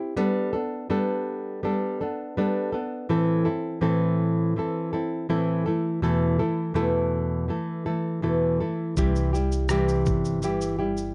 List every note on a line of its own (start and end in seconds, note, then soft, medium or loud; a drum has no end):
0.00 0.16 C4 soft
0.00 0.17 E4 soft
0.00 0.16 G4 soft
0.17 0.54 G3 medium
0.17 0.54 B3 medium
0.17 0.53 D4 medium
0.17 0.52 A4 medium
0.53 0.89 B3 soft
0.53 0.89 D4 soft
0.53 0.90 A4 medium
0.90 1.62 G3 medium
0.90 1.62 B3 medium
0.90 1.63 D4 medium
0.90 1.65 A4 medium
1.63 2.00 G3 medium
1.63 2.00 B3 medium
1.63 2.00 D4 medium
1.63 2.00 A4 medium
2.01 2.36 B3 soft
2.01 2.37 D4 soft
2.01 2.38 A4 medium
2.37 2.74 G3 medium
2.37 2.73 B3 medium
2.37 2.73 D4 medium
2.37 2.71 A4 medium
2.72 3.09 B3 soft
2.72 3.10 D4 soft
2.72 3.09 A4 soft
3.09 3.47 A2 medium
3.09 3.47 E3 medium
3.09 3.46 C4 medium
3.09 3.45 E4 medium
3.09 3.44 A4 medium
3.45 3.80 C4 soft
3.45 3.81 E4 soft
3.45 3.81 A4 soft
3.81 4.56 A2 medium
3.81 4.56 E3 medium
3.81 4.56 C4 medium
3.81 4.57 E4 medium
3.81 4.59 A4 medium
4.56 4.94 E3 medium
4.56 4.93 C4 medium
4.56 4.93 E4 medium
4.56 4.92 A4 medium
4.93 5.29 C4 soft
4.93 5.29 E4 medium
4.93 5.29 A4 medium
5.29 5.67 A2 medium
5.29 5.67 E3 medium
5.29 5.67 C4 medium
5.29 5.66 E4 medium
5.29 5.65 A4 medium
5.66 6.02 E3 soft
5.66 6.02 A3 soft
5.66 6.02 E4 medium
5.66 6.02 A4 medium
6.02 6.40 E2 medium
6.02 6.40 B2 medium
6.02 6.40 E3 medium
6.02 6.39 A3 medium
6.02 6.38 E4 medium
6.02 6.38 A4 medium
6.39 6.74 E3 soft
6.39 6.74 A3 soft
6.39 6.74 E4 medium
6.39 6.75 A4 medium
6.74 7.49 E2 medium
6.74 7.49 B2 medium
6.74 7.48 E3 medium
6.74 7.48 A3 medium
6.74 7.49 E4 medium
6.74 7.49 A4 medium
7.48 7.86 E3 medium
7.48 7.86 A3 soft
7.48 7.85 E4 medium
7.48 7.85 A4 medium
7.86 8.22 E3 soft
7.86 8.22 A3 soft
7.86 8.22 E4 soft
7.86 8.23 A4 soft
8.22 8.60 E2 medium
8.22 8.60 B2 medium
8.22 8.60 E3 medium
8.22 8.60 A3 medium
8.22 8.60 E4 medium
8.22 8.59 A4 medium
8.60 8.96 E3 soft
8.60 8.98 A3 soft
8.60 8.97 E4 soft
8.60 8.97 A4 soft
8.97 10.03 C2 medium
8.97 9.34 C3 medium
8.97 9.34 E3 medium
8.97 9.34 G3 medium
8.97 9.33 E4 medium
8.97 9.32 G4 medium
8.97 kick medium
8.97 shaker medium
9.16 shaker soft
9.33 9.69 G3 soft
9.33 9.70 E4 soft
9.33 9.70 G4 medium
9.33 shaker soft
9.52 shaker soft
9.69 10.43 C3 medium
9.69 10.41 E3 medium
9.69 10.43 G3 medium
9.69 10.43 E4 medium
9.69 10.44 G4 medium
9.69 cross-stick medium
9.69 shaker medium
9.89 shaker soft
10.06 11.14 G1 medium
10.06 kick medium
10.06 shaker soft
10.25 shaker soft
10.42 10.80 E3 medium
10.42 10.80 G3 medium
10.42 10.78 E4 medium
10.42 10.77 G4 medium
10.42 shaker medium
10.61 shaker soft
10.79 11.14 G3 soft
10.79 11.14 E4 soft
10.79 11.14 G4 medium
10.97 shaker soft